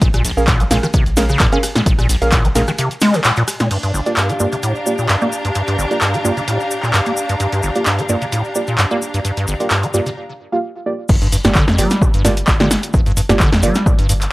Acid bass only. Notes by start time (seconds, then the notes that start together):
0.02 A#2
0.14 A#2
0.25 A#1
0.48 A#2
0.60 A#3
0.71 A#2
0.83 D#3
0.94 C3
1.30 C#3
1.40 A#2
1.53 C#4
1.76 A#2
1.86 A#2
1.99 A#2
2.09 A#1
2.33 A#2
2.45 A#3
2.56 A#2
2.68 D#3
2.79 C3
3.02 G#3
3.14 C#3
3.25 A#2
3.37 A#2
3.60 A#2
3.71 G2
3.83 G2
3.94 G1
4.17 G2
4.29 G3
4.40 G2
4.53 C3
4.63 A2
4.99 A#2
5.09 G2
5.22 A#3
5.45 G2
5.55 G2
5.68 G2
5.78 G1
6.01 G2
6.14 G3
6.25 G2
6.37 C3
6.48 A2
6.83 A#2
6.94 G2
7.06 A#3
7.29 G2
7.40 G2
7.53 G2
7.63 G1
7.86 G2
7.99 G3
8.09 G2
8.22 C3
8.32 A2
8.68 A#2
8.78 G2
8.91 A#3
9.14 G2
9.25 G2
9.37 G2
9.48 G1
9.71 G2
9.83 G3
9.94 G2
10.06 C3
11.09 G2
11.22 G2
11.32 G2
11.45 G2
11.55 D3
11.68 F2
11.79 G3
12.01 G2
12.14 G2
12.25 G2
12.60 D3
12.94 G2
13.06 G2
13.17 G2
13.29 G2
13.40 D3
13.53 F2
13.63 G3
13.86 G2
13.99 G2
14.09 G2